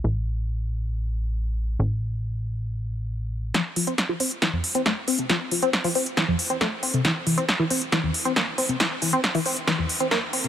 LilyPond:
<<
  \new Staff \with { instrumentName = "Synth arpeggio sound" } { \clef bass \time 4/4 \key f \major \tempo 4 = 137 r1 | r1 | f16 r16 f16 c'16 r16 f16 c'16 r16 e16 f,16 r16 c'16 a16 r16 c'16 c16 | f16 r16 f16 c'16 r16 f16 c'16 r16 e16 f,16 r16 c'16 a16 r16 c'16 c16 |
e16 r16 e16 c'16 r16 e16 c'16 r16 e16 e,16 r16 c'16 bes16 r16 c'16 c16 | e16 r16 e16 c'16 r16 e16 c'16 r16 e16 e,16 r16 c'16 bes16 r16 c'16 c16 | }
  \new Staff \with { instrumentName = "Analog synth bass" } { \clef bass \time 4/4 \key f \major a,,1 | a,,1 | r1 | r1 |
r1 | r1 | }
  \new DrumStaff \with { instrumentName = "Drums" } \drummode { \time 4/4 r4 r4 r4 r4 | r4 r4 r4 r4 | <hh sn>8 hho16 hh16 <hh sn>8 hho16 hh16 <hh sn>8 hho16 hh16 <hh sn>8 hho16 hh16 | <hh sn>8 hho16 hh16 <hh sn>16 hho16 hho16 hh16 <hh sn>8 hho16 hh16 <hh sn>8 hho16 hh16 |
<hh sn>8 hho16 hh16 <hh sn>8 hho16 hh16 <hh sn>8 hho16 hh16 <hh sn>8 hho16 hh16 | <hh sn>8 hho8 <hh sn>16 hho16 hho16 hh16 <hh sn>8 hho16 hh16 <hh sn>8 hho16 hh16 | }
>>